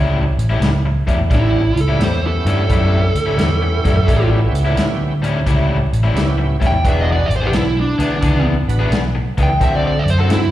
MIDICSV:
0, 0, Header, 1, 7, 480
1, 0, Start_track
1, 0, Tempo, 691244
1, 907, Time_signature, 4, 2, 24, 8
1, 7300, End_track
2, 0, Start_track
2, 0, Title_t, "Lead electric guitar"
2, 0, Program_c, 0, 29
2, 935, Note_on_c, 0, 64, 87
2, 1233, Note_off_c, 0, 64, 0
2, 1256, Note_on_c, 0, 69, 74
2, 1398, Note_off_c, 0, 69, 0
2, 1415, Note_on_c, 0, 72, 86
2, 1558, Note_off_c, 0, 72, 0
2, 1577, Note_on_c, 0, 69, 83
2, 2978, Note_off_c, 0, 69, 0
2, 4629, Note_on_c, 0, 79, 85
2, 4766, Note_off_c, 0, 79, 0
2, 4783, Note_on_c, 0, 76, 70
2, 4868, Note_off_c, 0, 76, 0
2, 4868, Note_on_c, 0, 75, 76
2, 4915, Note_off_c, 0, 75, 0
2, 4946, Note_on_c, 0, 74, 89
2, 5042, Note_on_c, 0, 76, 77
2, 5056, Note_off_c, 0, 76, 0
2, 5085, Note_off_c, 0, 74, 0
2, 5111, Note_on_c, 0, 72, 75
2, 5185, Note_on_c, 0, 67, 84
2, 5195, Note_off_c, 0, 72, 0
2, 5233, Note_off_c, 0, 67, 0
2, 5253, Note_on_c, 0, 64, 85
2, 5398, Note_off_c, 0, 64, 0
2, 5420, Note_on_c, 0, 62, 88
2, 5871, Note_off_c, 0, 62, 0
2, 6547, Note_on_c, 0, 79, 82
2, 6683, Note_off_c, 0, 79, 0
2, 6693, Note_on_c, 0, 76, 76
2, 6774, Note_off_c, 0, 76, 0
2, 6774, Note_on_c, 0, 74, 71
2, 6826, Note_off_c, 0, 74, 0
2, 6854, Note_on_c, 0, 74, 76
2, 6937, Note_on_c, 0, 76, 76
2, 6962, Note_off_c, 0, 76, 0
2, 6996, Note_off_c, 0, 74, 0
2, 7014, Note_on_c, 0, 72, 78
2, 7084, Note_off_c, 0, 72, 0
2, 7084, Note_on_c, 0, 69, 78
2, 7140, Note_off_c, 0, 69, 0
2, 7171, Note_on_c, 0, 64, 81
2, 7300, Note_off_c, 0, 64, 0
2, 7300, End_track
3, 0, Start_track
3, 0, Title_t, "Tonewheel organ"
3, 0, Program_c, 1, 16
3, 1382, Note_on_c, 1, 59, 54
3, 1388, Note_on_c, 1, 61, 51
3, 1392, Note_on_c, 1, 64, 53
3, 1398, Note_on_c, 1, 67, 64
3, 2123, Note_off_c, 1, 59, 0
3, 2126, Note_off_c, 1, 61, 0
3, 2128, Note_off_c, 1, 64, 0
3, 2131, Note_off_c, 1, 67, 0
3, 2348, Note_on_c, 1, 59, 66
3, 2355, Note_on_c, 1, 61, 61
3, 2361, Note_on_c, 1, 64, 60
3, 2363, Note_on_c, 1, 67, 78
3, 2819, Note_off_c, 1, 59, 0
3, 2827, Note_on_c, 1, 59, 65
3, 2828, Note_off_c, 1, 61, 0
3, 2830, Note_off_c, 1, 64, 0
3, 2836, Note_on_c, 1, 61, 54
3, 2837, Note_off_c, 1, 67, 0
3, 2838, Note_on_c, 1, 64, 61
3, 2845, Note_on_c, 1, 67, 68
3, 3566, Note_off_c, 1, 59, 0
3, 3570, Note_off_c, 1, 61, 0
3, 3571, Note_off_c, 1, 64, 0
3, 3575, Note_off_c, 1, 67, 0
3, 4267, Note_on_c, 1, 59, 69
3, 4269, Note_on_c, 1, 61, 61
3, 4276, Note_on_c, 1, 64, 64
3, 4283, Note_on_c, 1, 67, 77
3, 4557, Note_off_c, 1, 59, 0
3, 4558, Note_off_c, 1, 61, 0
3, 4562, Note_off_c, 1, 64, 0
3, 4565, Note_off_c, 1, 67, 0
3, 4748, Note_on_c, 1, 59, 64
3, 4752, Note_on_c, 1, 62, 53
3, 4755, Note_on_c, 1, 66, 60
3, 4764, Note_on_c, 1, 68, 74
3, 5038, Note_off_c, 1, 59, 0
3, 5040, Note_off_c, 1, 62, 0
3, 5041, Note_off_c, 1, 66, 0
3, 5046, Note_off_c, 1, 68, 0
3, 6027, Note_on_c, 1, 59, 79
3, 6033, Note_on_c, 1, 62, 70
3, 6040, Note_on_c, 1, 66, 65
3, 6043, Note_on_c, 1, 71, 83
3, 6172, Note_off_c, 1, 59, 0
3, 6175, Note_off_c, 1, 62, 0
3, 6179, Note_off_c, 1, 66, 0
3, 6180, Note_off_c, 1, 71, 0
3, 7300, End_track
4, 0, Start_track
4, 0, Title_t, "Overdriven electric guitar"
4, 0, Program_c, 2, 29
4, 0, Note_on_c, 2, 45, 88
4, 0, Note_on_c, 2, 55, 85
4, 0, Note_on_c, 2, 61, 95
4, 0, Note_on_c, 2, 64, 91
4, 151, Note_off_c, 2, 45, 0
4, 153, Note_off_c, 2, 55, 0
4, 153, Note_off_c, 2, 61, 0
4, 156, Note_off_c, 2, 64, 0
4, 344, Note_on_c, 2, 64, 97
4, 349, Note_on_c, 2, 61, 80
4, 352, Note_on_c, 2, 55, 68
4, 353, Note_on_c, 2, 45, 64
4, 473, Note_off_c, 2, 64, 0
4, 476, Note_off_c, 2, 61, 0
4, 477, Note_off_c, 2, 55, 0
4, 478, Note_off_c, 2, 45, 0
4, 743, Note_on_c, 2, 45, 83
4, 747, Note_on_c, 2, 55, 66
4, 749, Note_on_c, 2, 61, 91
4, 751, Note_on_c, 2, 64, 89
4, 818, Note_off_c, 2, 61, 0
4, 818, Note_off_c, 2, 64, 0
4, 822, Note_off_c, 2, 55, 0
4, 825, Note_off_c, 2, 45, 0
4, 905, Note_on_c, 2, 45, 78
4, 906, Note_on_c, 2, 55, 88
4, 909, Note_on_c, 2, 61, 87
4, 915, Note_on_c, 2, 64, 94
4, 1115, Note_off_c, 2, 45, 0
4, 1115, Note_off_c, 2, 55, 0
4, 1117, Note_off_c, 2, 61, 0
4, 1120, Note_off_c, 2, 64, 0
4, 1307, Note_on_c, 2, 64, 95
4, 1310, Note_on_c, 2, 61, 82
4, 1315, Note_on_c, 2, 45, 81
4, 1316, Note_on_c, 2, 55, 83
4, 1436, Note_off_c, 2, 64, 0
4, 1438, Note_off_c, 2, 61, 0
4, 1440, Note_off_c, 2, 45, 0
4, 1440, Note_off_c, 2, 55, 0
4, 1713, Note_on_c, 2, 45, 82
4, 1714, Note_on_c, 2, 55, 84
4, 1718, Note_on_c, 2, 64, 82
4, 1719, Note_on_c, 2, 61, 85
4, 1815, Note_off_c, 2, 45, 0
4, 1816, Note_off_c, 2, 55, 0
4, 1818, Note_off_c, 2, 64, 0
4, 1819, Note_off_c, 2, 61, 0
4, 1869, Note_on_c, 2, 45, 88
4, 1871, Note_on_c, 2, 55, 91
4, 1876, Note_on_c, 2, 61, 98
4, 1877, Note_on_c, 2, 64, 97
4, 2078, Note_off_c, 2, 45, 0
4, 2079, Note_off_c, 2, 55, 0
4, 2081, Note_off_c, 2, 61, 0
4, 2082, Note_off_c, 2, 64, 0
4, 2265, Note_on_c, 2, 64, 94
4, 2268, Note_on_c, 2, 61, 91
4, 2271, Note_on_c, 2, 55, 68
4, 2276, Note_on_c, 2, 45, 69
4, 2396, Note_off_c, 2, 64, 0
4, 2397, Note_off_c, 2, 61, 0
4, 2399, Note_off_c, 2, 55, 0
4, 2402, Note_off_c, 2, 45, 0
4, 2670, Note_on_c, 2, 45, 83
4, 2672, Note_on_c, 2, 55, 86
4, 2674, Note_on_c, 2, 61, 75
4, 2681, Note_on_c, 2, 64, 82
4, 2741, Note_off_c, 2, 64, 0
4, 2746, Note_off_c, 2, 61, 0
4, 2750, Note_off_c, 2, 55, 0
4, 2751, Note_off_c, 2, 45, 0
4, 2828, Note_on_c, 2, 45, 84
4, 2832, Note_on_c, 2, 55, 83
4, 2836, Note_on_c, 2, 61, 89
4, 2838, Note_on_c, 2, 64, 94
4, 3038, Note_off_c, 2, 45, 0
4, 3040, Note_off_c, 2, 55, 0
4, 3042, Note_off_c, 2, 61, 0
4, 3043, Note_off_c, 2, 64, 0
4, 3228, Note_on_c, 2, 64, 96
4, 3232, Note_on_c, 2, 61, 89
4, 3234, Note_on_c, 2, 55, 68
4, 3237, Note_on_c, 2, 45, 68
4, 3358, Note_off_c, 2, 64, 0
4, 3360, Note_off_c, 2, 61, 0
4, 3361, Note_off_c, 2, 55, 0
4, 3363, Note_off_c, 2, 45, 0
4, 3626, Note_on_c, 2, 45, 75
4, 3629, Note_on_c, 2, 55, 84
4, 3634, Note_on_c, 2, 61, 97
4, 3635, Note_on_c, 2, 64, 85
4, 3733, Note_off_c, 2, 45, 0
4, 3734, Note_off_c, 2, 55, 0
4, 3737, Note_off_c, 2, 61, 0
4, 3738, Note_off_c, 2, 64, 0
4, 3794, Note_on_c, 2, 45, 85
4, 3797, Note_on_c, 2, 55, 91
4, 3800, Note_on_c, 2, 64, 88
4, 3801, Note_on_c, 2, 61, 91
4, 4001, Note_off_c, 2, 45, 0
4, 4002, Note_off_c, 2, 55, 0
4, 4004, Note_off_c, 2, 61, 0
4, 4004, Note_off_c, 2, 64, 0
4, 4190, Note_on_c, 2, 61, 74
4, 4190, Note_on_c, 2, 64, 87
4, 4192, Note_on_c, 2, 55, 79
4, 4196, Note_on_c, 2, 45, 66
4, 4319, Note_off_c, 2, 61, 0
4, 4319, Note_off_c, 2, 64, 0
4, 4320, Note_off_c, 2, 55, 0
4, 4322, Note_off_c, 2, 45, 0
4, 4584, Note_on_c, 2, 45, 77
4, 4591, Note_on_c, 2, 55, 72
4, 4594, Note_on_c, 2, 61, 71
4, 4594, Note_on_c, 2, 64, 79
4, 4668, Note_off_c, 2, 45, 0
4, 4670, Note_off_c, 2, 64, 0
4, 4671, Note_off_c, 2, 55, 0
4, 4671, Note_off_c, 2, 61, 0
4, 4757, Note_on_c, 2, 52, 72
4, 4760, Note_on_c, 2, 59, 77
4, 4762, Note_on_c, 2, 62, 81
4, 4768, Note_on_c, 2, 68, 92
4, 4962, Note_off_c, 2, 52, 0
4, 4964, Note_off_c, 2, 59, 0
4, 4964, Note_off_c, 2, 62, 0
4, 4968, Note_off_c, 2, 68, 0
4, 5151, Note_on_c, 2, 68, 91
4, 5156, Note_on_c, 2, 62, 94
4, 5158, Note_on_c, 2, 59, 90
4, 5163, Note_on_c, 2, 52, 74
4, 5279, Note_off_c, 2, 68, 0
4, 5282, Note_off_c, 2, 62, 0
4, 5283, Note_off_c, 2, 59, 0
4, 5285, Note_off_c, 2, 52, 0
4, 5544, Note_on_c, 2, 52, 76
4, 5549, Note_on_c, 2, 62, 79
4, 5550, Note_on_c, 2, 59, 80
4, 5552, Note_on_c, 2, 68, 83
4, 5651, Note_off_c, 2, 52, 0
4, 5654, Note_off_c, 2, 59, 0
4, 5654, Note_off_c, 2, 62, 0
4, 5655, Note_off_c, 2, 68, 0
4, 5705, Note_on_c, 2, 52, 89
4, 5711, Note_on_c, 2, 59, 94
4, 5712, Note_on_c, 2, 62, 84
4, 5715, Note_on_c, 2, 68, 88
4, 5915, Note_off_c, 2, 52, 0
4, 5918, Note_off_c, 2, 59, 0
4, 5919, Note_off_c, 2, 62, 0
4, 5920, Note_off_c, 2, 68, 0
4, 6105, Note_on_c, 2, 68, 93
4, 6111, Note_on_c, 2, 62, 80
4, 6113, Note_on_c, 2, 59, 81
4, 6117, Note_on_c, 2, 52, 69
4, 6235, Note_off_c, 2, 68, 0
4, 6238, Note_off_c, 2, 62, 0
4, 6239, Note_off_c, 2, 59, 0
4, 6241, Note_off_c, 2, 52, 0
4, 6512, Note_on_c, 2, 52, 74
4, 6516, Note_on_c, 2, 59, 78
4, 6518, Note_on_c, 2, 62, 80
4, 6522, Note_on_c, 2, 68, 87
4, 6581, Note_off_c, 2, 68, 0
4, 6586, Note_off_c, 2, 62, 0
4, 6588, Note_off_c, 2, 59, 0
4, 6590, Note_off_c, 2, 52, 0
4, 6671, Note_on_c, 2, 50, 86
4, 6673, Note_on_c, 2, 60, 90
4, 6677, Note_on_c, 2, 66, 86
4, 6680, Note_on_c, 2, 69, 103
4, 6877, Note_off_c, 2, 50, 0
4, 6878, Note_off_c, 2, 60, 0
4, 6880, Note_off_c, 2, 66, 0
4, 6882, Note_off_c, 2, 69, 0
4, 7072, Note_on_c, 2, 69, 92
4, 7075, Note_on_c, 2, 60, 82
4, 7077, Note_on_c, 2, 50, 74
4, 7077, Note_on_c, 2, 66, 92
4, 7197, Note_off_c, 2, 69, 0
4, 7199, Note_off_c, 2, 50, 0
4, 7199, Note_off_c, 2, 60, 0
4, 7200, Note_off_c, 2, 66, 0
4, 7300, End_track
5, 0, Start_track
5, 0, Title_t, "Fingered electric bass"
5, 0, Program_c, 3, 33
5, 0, Note_on_c, 3, 37, 91
5, 226, Note_off_c, 3, 37, 0
5, 256, Note_on_c, 3, 33, 78
5, 401, Note_off_c, 3, 33, 0
5, 417, Note_on_c, 3, 37, 89
5, 702, Note_off_c, 3, 37, 0
5, 748, Note_on_c, 3, 40, 77
5, 888, Note_off_c, 3, 40, 0
5, 907, Note_on_c, 3, 33, 95
5, 1189, Note_off_c, 3, 33, 0
5, 1222, Note_on_c, 3, 37, 95
5, 1365, Note_off_c, 3, 37, 0
5, 1378, Note_on_c, 3, 40, 77
5, 1664, Note_off_c, 3, 40, 0
5, 1701, Note_on_c, 3, 43, 89
5, 1845, Note_off_c, 3, 43, 0
5, 1871, Note_on_c, 3, 42, 96
5, 2151, Note_off_c, 3, 42, 0
5, 2186, Note_on_c, 3, 38, 80
5, 2328, Note_off_c, 3, 38, 0
5, 2349, Note_on_c, 3, 40, 89
5, 2631, Note_off_c, 3, 40, 0
5, 2670, Note_on_c, 3, 42, 80
5, 2811, Note_off_c, 3, 42, 0
5, 2832, Note_on_c, 3, 33, 97
5, 3113, Note_off_c, 3, 33, 0
5, 3144, Note_on_c, 3, 37, 93
5, 3288, Note_off_c, 3, 37, 0
5, 3307, Note_on_c, 3, 38, 86
5, 3730, Note_off_c, 3, 38, 0
5, 3793, Note_on_c, 3, 37, 88
5, 4074, Note_off_c, 3, 37, 0
5, 4116, Note_on_c, 3, 33, 76
5, 4255, Note_off_c, 3, 33, 0
5, 4263, Note_on_c, 3, 37, 84
5, 4548, Note_off_c, 3, 37, 0
5, 4593, Note_on_c, 3, 40, 80
5, 4733, Note_off_c, 3, 40, 0
5, 4753, Note_on_c, 3, 28, 89
5, 5033, Note_off_c, 3, 28, 0
5, 5059, Note_on_c, 3, 32, 81
5, 5205, Note_off_c, 3, 32, 0
5, 5224, Note_on_c, 3, 35, 84
5, 5507, Note_off_c, 3, 35, 0
5, 5546, Note_on_c, 3, 38, 88
5, 5688, Note_off_c, 3, 38, 0
5, 5711, Note_on_c, 3, 37, 96
5, 5991, Note_off_c, 3, 37, 0
5, 6021, Note_on_c, 3, 33, 75
5, 6165, Note_off_c, 3, 33, 0
5, 6185, Note_on_c, 3, 35, 78
5, 6467, Note_off_c, 3, 35, 0
5, 6509, Note_on_c, 3, 37, 74
5, 6670, Note_off_c, 3, 37, 0
5, 6670, Note_on_c, 3, 38, 94
5, 6949, Note_off_c, 3, 38, 0
5, 6984, Note_on_c, 3, 42, 91
5, 7126, Note_off_c, 3, 42, 0
5, 7142, Note_on_c, 3, 43, 78
5, 7300, Note_off_c, 3, 43, 0
5, 7300, End_track
6, 0, Start_track
6, 0, Title_t, "Muted overdriven electric guitar strokes"
6, 595, Note_on_c, 9, 29, 55
6, 664, Note_off_c, 9, 29, 0
6, 826, Note_on_c, 9, 29, 45
6, 895, Note_off_c, 9, 29, 0
6, 2515, Note_on_c, 9, 29, 47
6, 2585, Note_off_c, 9, 29, 0
6, 2750, Note_on_c, 9, 29, 46
6, 2819, Note_off_c, 9, 29, 0
6, 4431, Note_on_c, 9, 29, 47
6, 4501, Note_off_c, 9, 29, 0
6, 4679, Note_on_c, 9, 29, 53
6, 4748, Note_off_c, 9, 29, 0
6, 6355, Note_on_c, 9, 29, 50
6, 6424, Note_off_c, 9, 29, 0
6, 6590, Note_on_c, 9, 29, 57
6, 6659, Note_off_c, 9, 29, 0
6, 7300, End_track
7, 0, Start_track
7, 0, Title_t, "Drums"
7, 270, Note_on_c, 9, 42, 62
7, 339, Note_off_c, 9, 42, 0
7, 429, Note_on_c, 9, 42, 75
7, 438, Note_on_c, 9, 38, 89
7, 498, Note_off_c, 9, 42, 0
7, 507, Note_off_c, 9, 38, 0
7, 749, Note_on_c, 9, 36, 82
7, 752, Note_on_c, 9, 42, 61
7, 818, Note_off_c, 9, 36, 0
7, 821, Note_off_c, 9, 42, 0
7, 908, Note_on_c, 9, 36, 115
7, 909, Note_on_c, 9, 42, 69
7, 978, Note_off_c, 9, 36, 0
7, 978, Note_off_c, 9, 42, 0
7, 1230, Note_on_c, 9, 42, 59
7, 1300, Note_off_c, 9, 42, 0
7, 1392, Note_on_c, 9, 42, 76
7, 1401, Note_on_c, 9, 38, 106
7, 1462, Note_off_c, 9, 42, 0
7, 1471, Note_off_c, 9, 38, 0
7, 1711, Note_on_c, 9, 42, 52
7, 1780, Note_off_c, 9, 42, 0
7, 1872, Note_on_c, 9, 36, 101
7, 1872, Note_on_c, 9, 42, 75
7, 1941, Note_off_c, 9, 36, 0
7, 1941, Note_off_c, 9, 42, 0
7, 2190, Note_on_c, 9, 42, 59
7, 2259, Note_off_c, 9, 42, 0
7, 2351, Note_on_c, 9, 42, 76
7, 2360, Note_on_c, 9, 38, 90
7, 2420, Note_off_c, 9, 42, 0
7, 2429, Note_off_c, 9, 38, 0
7, 2674, Note_on_c, 9, 36, 71
7, 2674, Note_on_c, 9, 42, 64
7, 2683, Note_on_c, 9, 38, 33
7, 2743, Note_off_c, 9, 36, 0
7, 2743, Note_off_c, 9, 42, 0
7, 2752, Note_off_c, 9, 38, 0
7, 2834, Note_on_c, 9, 36, 113
7, 2836, Note_on_c, 9, 42, 82
7, 2904, Note_off_c, 9, 36, 0
7, 2906, Note_off_c, 9, 42, 0
7, 3158, Note_on_c, 9, 42, 60
7, 3228, Note_off_c, 9, 42, 0
7, 3313, Note_on_c, 9, 42, 84
7, 3322, Note_on_c, 9, 38, 92
7, 3382, Note_off_c, 9, 42, 0
7, 3391, Note_off_c, 9, 38, 0
7, 3637, Note_on_c, 9, 42, 59
7, 3706, Note_off_c, 9, 42, 0
7, 3795, Note_on_c, 9, 36, 101
7, 3795, Note_on_c, 9, 42, 76
7, 3864, Note_off_c, 9, 36, 0
7, 3864, Note_off_c, 9, 42, 0
7, 4119, Note_on_c, 9, 42, 64
7, 4189, Note_off_c, 9, 42, 0
7, 4280, Note_on_c, 9, 42, 77
7, 4289, Note_on_c, 9, 38, 91
7, 4350, Note_off_c, 9, 42, 0
7, 4359, Note_off_c, 9, 38, 0
7, 4595, Note_on_c, 9, 36, 76
7, 4597, Note_on_c, 9, 42, 60
7, 4607, Note_on_c, 9, 38, 30
7, 4664, Note_off_c, 9, 36, 0
7, 4667, Note_off_c, 9, 42, 0
7, 4676, Note_off_c, 9, 38, 0
7, 4754, Note_on_c, 9, 36, 114
7, 4755, Note_on_c, 9, 42, 86
7, 4824, Note_off_c, 9, 36, 0
7, 4825, Note_off_c, 9, 42, 0
7, 5073, Note_on_c, 9, 42, 58
7, 5143, Note_off_c, 9, 42, 0
7, 5229, Note_on_c, 9, 42, 81
7, 5238, Note_on_c, 9, 38, 102
7, 5299, Note_off_c, 9, 42, 0
7, 5308, Note_off_c, 9, 38, 0
7, 5553, Note_on_c, 9, 42, 57
7, 5622, Note_off_c, 9, 42, 0
7, 5709, Note_on_c, 9, 42, 72
7, 5713, Note_on_c, 9, 36, 107
7, 5779, Note_off_c, 9, 42, 0
7, 5782, Note_off_c, 9, 36, 0
7, 6035, Note_on_c, 9, 42, 54
7, 6105, Note_off_c, 9, 42, 0
7, 6192, Note_on_c, 9, 42, 78
7, 6201, Note_on_c, 9, 38, 108
7, 6261, Note_off_c, 9, 42, 0
7, 6270, Note_off_c, 9, 38, 0
7, 6511, Note_on_c, 9, 42, 58
7, 6512, Note_on_c, 9, 36, 80
7, 6580, Note_off_c, 9, 42, 0
7, 6582, Note_off_c, 9, 36, 0
7, 6673, Note_on_c, 9, 36, 108
7, 6673, Note_on_c, 9, 42, 83
7, 6742, Note_off_c, 9, 36, 0
7, 6742, Note_off_c, 9, 42, 0
7, 6998, Note_on_c, 9, 42, 61
7, 7067, Note_off_c, 9, 42, 0
7, 7152, Note_on_c, 9, 42, 84
7, 7161, Note_on_c, 9, 38, 101
7, 7221, Note_off_c, 9, 42, 0
7, 7230, Note_off_c, 9, 38, 0
7, 7300, End_track
0, 0, End_of_file